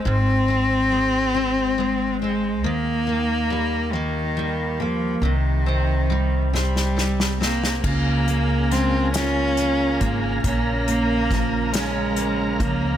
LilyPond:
<<
  \new Staff \with { instrumentName = "Tonewheel organ" } { \time 6/8 \key des \lydian \tempo 4. = 46 << { r2. | r2. | r2. | <aes' bes''>2. |
<bes' bes''>2. | } \\ { r2. | r2. | r2. | <des f''>2.~ |
<des f''>2. | } >> }
  \new Staff \with { instrumentName = "Cello" } { \time 6/8 \key des \lydian c'2~ c'8 aes8 | bes4. ees4 f8 | ees4. g4 bes8 | bes4 c'8 des'4 bes8 |
bes4. aes4 bes8 | }
  \new Staff \with { instrumentName = "Steel-string acoustic guitar" } { \time 6/8 \key des \lydian <aes, aes c'>8 c'8 aes8 c'8 aes8 c'8 | ees8 bes8 g8 bes8 g8 bes8 | c8 c'8 g8 c'8 g8 c'8 | <des f'>8 bes8 aes8 f'8 bes8 aes8 |
<bes, des'>8 bes8 f8 des'8 bes8 f8 | }
  \new Staff \with { instrumentName = "Upright bass" } { \clef bass \time 6/8 \key des \lydian aes,,2. | ees,2. | c,2. | des,2~ des,8 aes,,8 |
bes,,2~ bes,,8 des,8 | }
  \new DrumStaff \with { instrumentName = "Drums" } \drummode { \time 6/8 r4. r4. | r4. r4. | r4. sn16 sn16 sn16 sn16 sn16 sn16 | <cymc bd>8 hh8 <hh sn>8 <hh sn>8 hh8 <hh bd>8 |
<hh bd>8 hh8 <hh bd sn>8 <hh sn>8 hh8 <hh bd>8 | }
>>